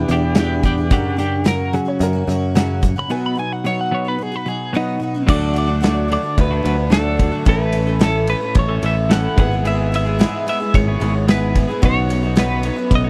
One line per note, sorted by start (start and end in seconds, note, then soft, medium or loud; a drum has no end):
0.00 0.86 E4 medium
0.00 0.10 G4 medium
0.00 0.87 G#4 medium
0.00 0.88 B4 medium
0.08 0.33 E2 medium
0.08 0.91 E2 medium
0.08 0.33 B2 medium
0.08 0.35 E3 medium
0.08 0.35 B3 medium
0.08 0.36 D4 medium
0.08 0.36 E4 medium
0.08 closed hi-hat medium
0.12 0.37 G4 medium
0.12 0.37 G#4 medium
0.35 0.62 E2 medium
0.35 0.62 B2 medium
0.35 0.63 E3 medium
0.35 0.64 B3 medium
0.35 0.64 E4 medium
0.35 0.65 G#4 medium
0.35 snare loud
0.35 closed hi-hat medium
0.39 0.63 D4 medium
0.39 0.64 G4 medium
0.63 0.89 E2 medium
0.63 0.89 B2 medium
0.63 0.78 E3 medium
0.63 0.78 B3 medium
0.63 0.90 D4 medium
0.63 0.79 E4 medium
0.63 0.91 G4 medium
0.63 kick medium
0.63 closed hi-hat medium
0.67 0.77 G#4 medium
0.78 0.92 B3 soft
0.78 0.92 E4 soft
0.78 0.91 G#4 medium
0.90 1.18 F#2 medium
0.90 1.78 F#2 medium
0.90 1.19 C#3 medium
0.90 1.15 F#3 medium
0.90 1.17 A#3 medium
0.90 3.06 C#4 medium
0.90 1.18 C#4 medium
0.90 1.17 D4 medium
0.90 3.07 F#4 medium
0.90 1.19 F#4 medium
0.90 1.18 G4 medium
0.90 3.07 A#4 medium
0.90 kick loud
0.90 closed hi-hat medium
1.17 1.44 F#2 medium
1.17 1.44 C#3 medium
1.17 1.44 F#3 medium
1.17 1.44 A#3 medium
1.17 1.45 C#4 medium
1.17 1.44 D4 medium
1.17 1.45 F#4 medium
1.17 1.46 G4 medium
1.17 closed hi-hat medium
1.44 1.86 F#2 medium
1.44 1.86 C#3 medium
1.44 1.87 F#3 medium
1.44 1.86 A#3 medium
1.44 1.85 C#4 medium
1.44 1.84 F#4 medium
1.44 1.73 A#4 loud
1.44 snare loud
1.44 closed hi-hat medium
1.73 1.99 F#2 medium
1.73 2.00 C#3 loud
1.73 2.00 F#3 loud
1.73 1.86 G#4 medium
1.73 closed hi-hat medium
1.85 1.98 F#3 soft
1.85 1.99 A#3 medium
1.85 2.00 C#4 medium
1.85 2.00 F#4 medium
1.85 2.00 C#5 medium
1.99 2.22 F#2 medium
1.99 2.26 C#3 medium
1.99 2.14 F#3 medium
1.99 2.14 A#3 medium
1.99 2.13 C#4 medium
1.99 2.53 C#4 medium
1.99 2.12 F#4 medium
1.99 2.55 A#4 loud
1.99 closed hi-hat medium
2.13 2.26 F#3 medium
2.13 2.27 A#3 medium
2.13 2.28 C#4 medium
2.13 2.27 F#4 medium
2.27 2.93 F#2 medium
2.27 2.53 F#2 medium
2.27 2.53 C#3 medium
2.27 2.55 F#3 medium
2.27 2.55 A#3 medium
2.27 2.55 C#4 medium
2.27 2.56 F#4 medium
2.27 closed hi-hat medium
2.55 2.83 F#2 medium
2.55 2.83 C#3 medium
2.55 2.80 F#3 medium
2.55 2.82 A#3 medium
2.55 2.83 C#4 medium
2.55 2.83 F#4 medium
2.55 snare loud
2.55 closed hi-hat loud
2.82 3.08 F#2 medium
2.82 3.08 C#3 medium
2.82 2.96 F#3 medium
2.82 2.97 A#3 medium
2.82 2.96 C#4 medium
2.82 kick medium
2.82 closed hi-hat medium
2.86 2.95 F#4 medium
2.96 3.09 F#3 soft
2.96 3.10 A#3 soft
2.96 3.10 C#4 medium
2.96 3.10 F#4 medium
2.96 3.11 B5 medium
3.08 3.37 B2 medium
3.08 3.34 F#3 medium
3.08 3.36 B3 medium
3.08 5.24 D#4 medium
3.08 3.37 D#4 medium
3.08 5.25 F#4 medium
3.08 3.38 F#4 medium
3.08 5.25 B4 medium
3.08 3.24 G#5 medium
3.26 3.38 B5 medium
3.35 3.62 B2 medium
3.35 3.64 F#3 medium
3.35 3.65 B3 medium
3.35 3.65 D#4 medium
3.35 3.53 G#5 medium
3.39 3.66 F#4 medium
3.53 3.65 F#5 medium
3.65 4.06 B2 medium
3.65 4.06 F#3 medium
3.65 4.07 B3 medium
3.65 4.06 D#4 medium
3.65 4.03 F#4 medium
3.65 3.79 C#5 loud
3.81 3.93 F#5 medium
3.91 4.17 B2 loud
3.91 4.18 F#3 loud
3.91 4.18 B3 loud
3.91 4.07 C#5 medium
4.05 4.18 B3 soft
4.05 4.20 D#4 medium
4.05 4.19 F#4 soft
4.05 4.23 B4 loud
4.18 4.44 B2 medium
4.18 4.33 F#3 medium
4.18 4.33 B3 medium
4.18 4.32 D#4 medium
4.18 4.31 F#4 medium
4.23 4.36 G#4 medium
4.32 4.46 B3 soft
4.32 4.47 D#4 medium
4.32 4.46 F#4 medium
4.32 4.48 B4 medium
4.46 4.71 B2 medium
4.46 4.74 F#3 medium
4.46 4.74 B3 medium
4.46 4.74 D#4 medium
4.46 4.75 F#4 medium
4.46 4.74 G#4 loud
4.74 5.01 B2 medium
4.74 4.98 F#3 medium
4.74 5.00 B3 medium
4.74 5.01 D#4 medium
4.74 5.28 D#4 loud
4.74 5.02 F#4 medium
4.74 5.31 D#5 medium
5.00 5.25 B2 medium
5.00 5.14 F#3 medium
5.00 5.15 B3 medium
5.00 5.15 D#4 medium
5.00 5.13 F#4 medium
5.14 5.29 B3 soft
5.14 5.29 D#4 medium
5.14 5.28 F#4 medium
5.27 6.16 D2 loud
5.27 5.56 D3 medium
5.27 5.52 F#3 medium
5.27 5.54 A3 medium
5.27 7.15 D4 medium
5.27 5.55 D4 medium
5.27 7.15 F#4 medium
5.27 5.56 F#4 medium
5.27 7.16 A4 medium
5.27 5.57 D5 medium
5.27 7.17 D5 medium
5.27 kick loud
5.27 crash loud
5.53 5.68 F#3 medium
5.53 5.69 A3 medium
5.53 5.68 D4 medium
5.53 5.65 F#4 medium
5.53 ride medium
5.58 6.08 D5 medium
5.66 5.81 A3 soft
5.66 5.82 D4 soft
5.66 5.82 F#4 medium
5.81 6.09 D3 medium
5.81 6.07 F#3 medium
5.81 6.08 A3 medium
5.81 6.08 D4 medium
5.81 6.10 F#4 medium
5.81 snare loud
5.81 ride loud
6.08 6.23 F#3 medium
6.08 6.23 A3 medium
6.08 6.23 D4 medium
6.08 6.21 F#4 medium
6.08 ride medium
6.13 6.37 D5 medium
6.23 6.64 A3 soft
6.23 6.64 D4 medium
6.23 6.64 F#4 medium
6.23 muted clean electric guitar stroke medium
6.38 6.60 D2 loud
6.38 6.93 B4 medium
6.38 kick medium
6.38 ride loud
6.51 6.63 A3 medium
6.51 6.64 D4 medium
6.51 6.64 F#4 medium
6.63 7.30 D2 medium
6.63 6.90 F#3 medium
6.63 6.90 A3 medium
6.63 6.91 D4 medium
6.63 6.91 F#4 medium
6.63 ride medium
6.77 muted clean electric guitar stroke medium
6.90 7.18 D3 medium
6.90 7.16 F#3 medium
6.90 7.17 A3 medium
6.90 7.19 D4 medium
6.90 7.19 F#4 medium
6.90 7.43 A4 medium
6.90 snare loud
6.90 ride loud
7.17 7.32 F#3 medium
7.17 7.33 A3 medium
7.17 7.32 D4 medium
7.17 7.48 D4 medium
7.17 7.47 F#4 soft
7.17 7.30 F#4 medium
7.17 kick medium
7.17 ride medium
7.22 7.46 A4 soft
7.22 7.48 D5 medium
7.31 7.45 A3 soft
7.31 7.47 D4 soft
7.31 7.46 F#4 medium
7.45 8.33 A1 loud
7.45 7.73 A2 medium
7.45 7.73 E3 medium
7.45 7.71 A3 medium
7.45 9.33 C#4 medium
7.45 7.73 C#4 medium
7.45 9.34 E4 medium
7.45 7.74 E4 medium
7.45 7.74 A4 medium
7.45 9.34 A4 medium
7.45 8.03 B4 medium
7.45 kick loud
7.45 ride loud
7.49 9.35 C#5 medium
7.72 7.87 A3 medium
7.72 7.87 C#4 medium
7.72 7.86 E4 medium
7.72 7.85 A4 medium
7.72 ride medium
7.87 7.99 A3 soft
7.87 7.99 C#4 medium
7.87 8.00 E4 medium
7.87 8.01 A4 medium
7.99 8.28 A2 medium
7.99 8.28 E3 medium
7.99 8.27 A3 medium
7.99 8.28 C#4 medium
7.99 8.28 E4 medium
7.99 8.29 A4 medium
7.99 snare loud
7.99 ride loud
8.03 8.29 A4 medium
8.27 8.41 E3 medium
8.27 8.42 A3 medium
8.27 8.42 C#4 medium
8.27 8.41 E4 medium
8.27 8.40 A4 medium
8.27 8.55 B4 medium
8.27 ride medium
8.41 8.81 A3 soft
8.41 8.82 C#4 soft
8.41 8.83 E4 medium
8.41 8.83 A4 medium
8.41 muted clean electric guitar stroke medium
8.55 8.77 A1 loud
8.55 kick medium
8.55 ride loud
8.59 8.85 C#5 medium
8.69 8.82 A3 medium
8.69 8.82 C#4 medium
8.69 8.83 A4 medium
8.82 9.26 A1 medium
8.82 8.96 E3 medium
8.82 9.10 A3 medium
8.82 9.10 C#4 medium
8.82 9.11 E4 medium
8.82 9.11 A4 medium
8.82 9.10 E5 loud
8.82 ride medium
9.10 9.38 A2 medium
9.10 9.38 E3 medium
9.10 9.37 A3 medium
9.10 9.38 C#4 medium
9.10 9.39 E4 medium
9.10 9.39 A4 medium
9.10 9.38 F#5 medium
9.10 snare loud
9.10 ride loud
9.36 10.25 G#1 loud
9.36 9.51 G#3 medium
9.36 11.51 B3 medium
9.36 9.52 B3 loud
9.36 11.51 E4 medium
9.36 9.50 E4 loud
9.36 11.52 G#4 medium
9.36 9.67 F#5 medium
9.36 kick loud
9.36 ride medium
9.41 9.50 G#4 medium
9.41 11.53 B4 medium
9.51 9.65 G#3 soft
9.51 9.66 B3 soft
9.51 9.66 E4 medium
9.51 9.65 G#4 medium
9.65 9.92 G#2 medium
9.65 9.92 E3 medium
9.65 9.91 G#3 medium
9.65 9.92 B3 medium
9.65 9.93 E4 medium
9.65 9.94 G#4 medium
9.65 9.94 E5 loud
9.65 ride medium
9.92 10.06 G#3 medium
9.92 10.06 B3 medium
9.92 10.05 E4 medium
9.92 10.04 G#4 medium
9.92 10.45 E5 loud
9.92 ride medium
10.05 10.18 G#3 soft
10.05 10.19 B3 medium
10.05 10.19 E4 medium
10.05 10.19 G#4 medium
10.19 10.46 G#2 medium
10.19 10.47 E3 medium
10.19 10.45 G#3 medium
10.19 10.47 B3 medium
10.19 10.47 E4 loud
10.19 10.47 G#4 loud
10.19 snare loud
10.19 ride loud
10.47 10.60 G#3 medium
10.47 10.61 B3 medium
10.47 10.60 E4 medium
10.47 10.59 G#4 medium
10.47 10.76 E5 loud
10.47 ride medium
10.60 11.01 B3 medium
10.60 11.02 E4 medium
10.60 11.01 G#4 medium
10.60 muted clean electric guitar stroke medium
10.64 10.99 G#3 soft
10.74 10.96 G#1 loud
10.74 11.25 C#5 loud
10.74 kick medium
10.74 ride loud
10.87 11.01 B3 medium
10.87 11.01 E4 medium
10.87 11.01 G#4 medium
11.00 11.66 G#1 medium
11.00 11.28 G#3 medium
11.00 11.29 B3 medium
11.00 11.29 E4 medium
11.00 11.29 G#4 medium
11.00 ride medium
11.15 muted clean electric guitar stroke medium
11.28 11.56 G#2 medium
11.28 11.56 E3 medium
11.28 11.54 G#3 medium
11.28 11.55 B3 medium
11.28 11.57 E4 medium
11.28 11.57 G#4 medium
11.28 11.85 B4 medium
11.28 snare loud
11.28 ride loud
11.55 11.69 G#3 medium
11.55 11.70 B3 medium
11.55 11.69 E4 medium
11.55 11.67 G#4 medium
11.55 kick medium
11.55 ride medium
11.68 11.83 G#3 soft
11.68 11.82 B3 soft
11.68 11.83 E4 medium
11.68 11.82 G#4 medium
11.82 12.69 B1 loud
11.82 12.09 B2 medium
11.82 12.09 D#3 medium
11.82 12.08 F#3 medium
11.82 12.09 B3 medium
11.82 12.10 C#4 medium
11.82 13.10 D#4 medium
11.82 12.24 D#4 medium
11.82 13.10 F#4 medium
11.82 12.11 F#4 medium
11.82 13.10 B4 medium
11.82 12.22 C#5 loud
11.82 13.10 C#5 medium
11.82 12.39 C#5 loud
11.82 kick loud
11.82 ride loud
12.09 12.23 F#3 medium
12.09 12.24 B3 medium
12.09 12.22 C#4 medium
12.09 12.21 F#4 medium
12.09 ride medium
12.22 12.35 F#3 soft
12.22 12.35 B3 soft
12.22 12.36 C#4 medium
12.22 12.37 D#4 medium
12.22 12.36 F#4 medium
12.22 12.38 C#5 medium
12.36 12.63 B2 medium
12.36 12.64 D#3 medium
12.36 12.61 F#3 medium
12.36 12.63 B3 medium
12.36 12.64 C#4 medium
12.36 12.63 D#4 loud
12.36 12.64 F#4 medium
12.36 12.94 B4 medium
12.36 12.64 C#5 loud
12.36 snare loud
12.36 ride loud
12.62 12.77 F#3 medium
12.62 12.77 B3 medium
12.62 12.77 C#4 medium
12.62 12.77 D#4 medium
12.62 12.75 F#4 medium
12.62 12.76 C#5 loud
12.62 ride medium
12.76 13.10 F#3 soft
12.76 13.10 B3 soft
12.76 13.10 C#4 medium
12.76 13.10 F#4 medium
12.76 muted clean electric guitar stroke medium
12.91 13.10 B1 loud
12.91 kick medium
12.91 ride loud
12.95 13.10 D#5 loud
13.04 13.10 D#4 medium
13.04 13.10 F#4 medium
13.04 13.10 C#5 medium